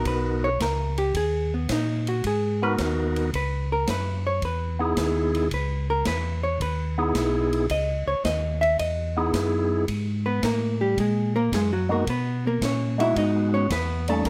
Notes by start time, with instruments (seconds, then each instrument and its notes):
Already playing: tonewheel organ B3 D#4 F#4 A#4
0.05 tonewheel organ B1, hollow-body jazz guitar B4, kick, ride
0.44 hollow-body jazz guitar C#5
0.60 tonewheel organ C#2, hollow-body jazz guitar A#4, kick, snare, hi-hat pedal, ride
0.97 hollow-body jazz guitar G4, ride
1.14 tonewheel organ D#2, hollow-body jazz guitar G#4, kick, ride
1.54 hollow-body jazz guitar B3
1.69 tonewheel organ A#2, hollow-body jazz guitar D#4, kick, snare, hi-hat pedal, ride
2.07 hollow-body jazz guitar F#4, ride
2.24 tonewheel organ G#2, hollow-body jazz guitar G#4, kick, ride
2.62 tonewheel organ B3 D#4 F#4 A#4, hollow-body jazz guitar B4
2.78 tonewheel organ D#2, kick, snare, hi-hat pedal, ride
3.16 ride
3.33 tonewheel organ C#2, hollow-body jazz guitar B4, kick, ride
3.72 hollow-body jazz guitar A#4
3.87 tonewheel organ F#2, hollow-body jazz guitar B4, kick, snare, hi-hat pedal, ride
4.27 hollow-body jazz guitar C#5
4.42 tonewheel organ E2, hollow-body jazz guitar B4, kick, ride
4.79 tonewheel organ B3 D#4 E4 G#4
4.97 tonewheel organ D#2, kick, snare, hi-hat pedal, ride
5.35 ride
5.51 tonewheel organ C#2, hollow-body jazz guitar B4, kick, ride
5.90 hollow-body jazz guitar A#4
6.05 tonewheel organ E2, hollow-body jazz guitar B4, kick, snare, hi-hat pedal, ride
6.43 hollow-body jazz guitar C#5
6.60 tonewheel organ D#2, hollow-body jazz guitar B4, kick, ride
6.98 tonewheel organ B3 D#4 E4 G#4
7.15 tonewheel organ B1, kick, snare, hi-hat pedal, ride
7.53 ride
7.69 tonewheel organ C#2, hollow-body jazz guitar D#5, kick, ride
8.06 tonewheel organ C#2, hollow-body jazz guitar C#5
8.24 tonewheel organ D#2, hollow-body jazz guitar D#5, kick, snare, hi-hat pedal, ride
8.61 hollow-body jazz guitar E5, ride
8.79 tonewheel organ E2, hollow-body jazz guitar D#5, kick, ride
9.17 tonewheel organ B3 D#4 E4 G#4
9.33 tonewheel organ F#2, kick, snare, hi-hat pedal, ride
9.88 tonewheel organ G#2, kick, ride
10.26 hollow-body jazz guitar B3 B4
10.43 tonewheel organ A2, hollow-body jazz guitar A#3 A#4, kick, snare, hi-hat pedal, ride
10.81 hollow-body jazz guitar G3 G4
10.97 tonewheel organ A#2, hollow-body jazz guitar G#3 G#4, kick, ride
11.36 hollow-body jazz guitar A#3 A#4
11.52 tonewheel organ F#2, hollow-body jazz guitar G#3 G#4, kick, snare, hi-hat pedal, ride
11.73 hollow-body jazz guitar F#3 F#4
11.89 tonewheel organ G#3 B3 D#4 F#4, hollow-body jazz guitar A#3 A#4
12.06 tonewheel organ B2, hollow-body jazz guitar B3 B4, kick, ride
12.47 hollow-body jazz guitar A#3 A#4
12.61 tonewheel organ A#2, hollow-body jazz guitar C#4 C#5, kick, snare, hi-hat pedal, ride
12.98 tonewheel organ G#3 B3 D#4 F#4, hollow-body jazz guitar E4 E5, ride
13.15 tonewheel organ G#2, hollow-body jazz guitar D#4 D#5, kick, ride
13.54 hollow-body jazz guitar C#4 C#5
13.70 tonewheel organ E2, hollow-body jazz guitar B3 B4, kick, snare, hi-hat pedal, ride
14.08 tonewheel organ G3 A#3 C#4 D#4, hollow-body jazz guitar A3 A4, ride
14.25 tonewheel organ D#2, kick, ride